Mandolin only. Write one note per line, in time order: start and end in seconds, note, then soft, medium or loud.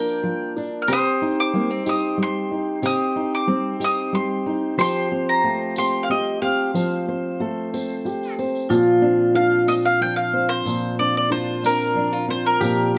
0.00 0.52 G5 medium
0.82 0.88 F6 medium
0.93 1.40 D#6 loud
1.40 1.84 D6 medium
1.89 2.18 D#6 medium
2.23 2.85 C6 medium
2.86 3.34 D#6 loud
3.35 3.84 D6 medium
3.84 4.14 D#6 loud
4.15 4.80 C6 medium
4.81 5.29 C6 loud
5.29 5.78 A#5 medium
5.78 6.04 C6 medium
6.03 6.10 F5 medium
6.11 6.41 D#5 medium
6.42 8.01 F5 medium
9.35 9.69 F5 medium
9.68 9.73 D#5 medium
9.85 10.01 F5 medium
10.02 10.16 G5 medium
10.16 10.50 F5 medium
10.49 10.94 C5 medium
10.99 11.15 D5 medium
11.17 11.31 D5 medium
11.32 11.65 C5 medium
11.66 12.30 A#4 medium
12.30 12.46 C5 medium
12.46 12.96 A#4 medium